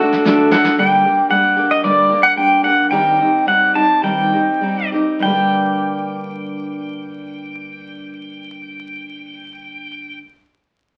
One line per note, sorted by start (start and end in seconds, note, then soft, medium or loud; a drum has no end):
0.00 0.74 A1 loud
0.00 0.78 A3 medium
0.00 0.51 D4 medium
0.00 0.25 D4 medium
0.00 0.49 F#4 loud
0.00 0.26 F#4 medium
0.00 0.25 A4 medium
0.00 0.26 A4 medium
0.00 0.84 F#5 medium
0.13 snare medium
0.24 0.51 D3 medium
0.24 0.52 A3 loud
0.24 0.52 D4 medium
0.24 0.52 F#4 medium
0.24 0.84 A4 medium
0.24 0.50 A4 medium
0.24 snare medium
0.51 0.84 D4 medium
0.51 0.78 D4 soft
0.51 0.79 F#4 medium
0.51 0.78 A4 medium
0.51 0.79 F#5 medium
0.51 snare medium
0.64 snare medium
0.78 1.04 G2 medium
0.78 1.04 D3 medium
0.78 1.05 G3 medium
0.78 1.05 A#3 medium
0.78 1.04 D4 medium
0.78 1.02 G4 medium
0.78 1.30 G5 medium
1.04 1.29 G3 soft
1.04 1.30 A#3 soft
1.04 1.31 D4 soft
1.04 1.30 G4 soft
1.30 1.57 G3 medium
1.30 1.57 A#3 medium
1.30 1.56 D4 medium
1.30 1.55 G4 medium
1.30 1.71 F#5 medium
1.57 1.83 G3 soft
1.57 1.84 A#3 soft
1.57 1.84 D4 soft
1.57 1.83 G4 medium
1.71 1.84 D#5 medium
1.83 2.10 G2 medium
1.83 2.10 D3 medium
1.83 2.11 G3 medium
1.83 2.11 A#3 medium
1.83 2.09 D4 medium
1.83 2.08 G4 medium
1.83 2.25 D5 medium
2.09 2.35 G3 soft
2.09 2.36 A#3 soft
2.09 2.37 D4 soft
2.09 2.37 G4 soft
2.23 2.37 F#5 medium
2.36 2.64 G3 medium
2.36 2.64 A#3 soft
2.36 2.63 D4 medium
2.36 2.62 G4 medium
2.36 2.64 G5 medium
2.63 2.90 G3 soft
2.63 2.92 A#3 soft
2.63 2.92 D4 soft
2.63 2.91 G4 soft
2.63 2.90 F#5 medium
2.91 3.19 G2 medium
2.91 3.19 D#3 medium
2.91 3.19 G3 medium
2.91 3.19 C4 medium
2.91 3.19 D#4 medium
2.91 3.17 G4 medium
2.91 3.48 G5 medium
3.19 3.44 G3 soft
3.19 3.46 C4 soft
3.19 3.47 D#4 soft
3.19 3.47 G4 soft
3.46 3.75 G3 medium
3.46 3.75 C4 medium
3.46 3.74 D#4 medium
3.46 3.73 G4 medium
3.46 3.74 F#5 medium
3.74 4.02 G3 soft
3.74 4.02 C4 soft
3.74 4.03 D#4 soft
3.74 4.03 G4 soft
3.74 4.04 A5 medium
4.03 4.32 G2 medium
4.03 4.33 D#3 medium
4.03 4.33 G3 medium
4.03 4.33 C4 medium
4.03 4.32 D#4 medium
4.03 4.31 G4 medium
4.03 4.88 G5 medium
4.32 4.60 G3 soft
4.32 4.61 C4 soft
4.32 4.62 D#4 soft
4.32 4.62 G4 soft
4.61 4.92 G3 soft
4.61 4.92 C4 medium
4.61 4.92 D#4 medium
4.61 4.91 G4 medium
4.92 5.23 G3 soft
4.92 5.24 C4 soft
4.92 5.23 D#4 soft
4.92 5.23 G4 soft
5.19 10.19 G2 medium
5.19 10.22 D3 medium
5.19 10.18 G5 medium
5.24 10.24 G3 medium
5.24 10.26 A#3 medium
5.24 10.28 D4 medium
5.30 10.30 G4 medium